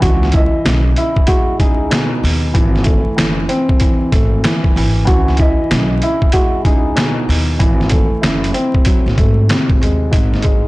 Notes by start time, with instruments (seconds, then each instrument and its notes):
0.00 upright bass C#2, upright piano E3, nylon-string guitar F#4, kick, closed hi-hat
0.23 snare
0.32 nylon-string guitar E4, upright piano D#5, kick, closed hi-hat
0.65 upright bass B1, upright piano C#3, snare, closed hi-hat
0.96 upright piano E4, closed hi-hat
1.17 kick
1.27 upright piano G#3, nylon-string guitar F#4, kick, closed hi-hat
1.60 upright bass C#2, upright piano D#4, nylon-string guitar G#4, kick, closed hi-hat
1.90 upright piano B2, snare, closed hi-hat
2.23 upright bass D#2, open hi-hat
2.54 upright bass G#1, upright piano E3, kick, closed hi-hat
2.76 snare
2.84 upright piano A3, kick, closed hi-hat
3.16 upright bass F#1, upright piano E3, snare, closed hi-hat
3.49 upright piano C4, closed hi-hat
3.69 kick
3.80 upright piano E3, kick, closed hi-hat
4.12 upright bass G#1, upright piano A3, kick, closed hi-hat
4.44 upright piano E3, snare, closed hi-hat
4.64 kick
4.76 upright bass G#1, upright piano E3, open hi-hat
5.05 upright bass C#2, upright piano E3, nylon-string guitar F#4, kick, closed hi-hat
5.28 snare
5.37 nylon-string guitar E4, upright piano D#5, kick, closed hi-hat
5.71 upright bass B1, upright piano C#3, snare, closed hi-hat
6.02 upright piano E4, closed hi-hat
6.22 kick
6.32 upright piano G#3, nylon-string guitar F#4, kick, closed hi-hat
6.65 upright bass C#2, upright piano D#4, nylon-string guitar G#4, kick, closed hi-hat
6.96 upright piano B2, snare, closed hi-hat
7.29 upright bass D#2, open hi-hat
7.59 upright bass G#1, upright piano E3, kick, closed hi-hat
7.81 snare
7.89 upright piano A3, kick, closed hi-hat
8.21 upright bass F#1, upright piano E4, snare, closed hi-hat
8.44 closed hi-hat
8.54 upright piano C4, closed hi-hat
8.74 kick
8.85 upright piano F#3, kick, closed hi-hat
9.06 upright bass G#1, snare
9.18 upright bass G#2, upright piano A3, kick, closed hi-hat
9.49 upright piano C3, snare, closed hi-hat
9.70 upright bass G#1, kick
9.81 upright bass D#2, upright piano G#3, closed hi-hat
10.11 upright bass G#1, upright piano G#2, kick, closed hi-hat
10.34 snare
10.43 upright piano G#3, kick, closed hi-hat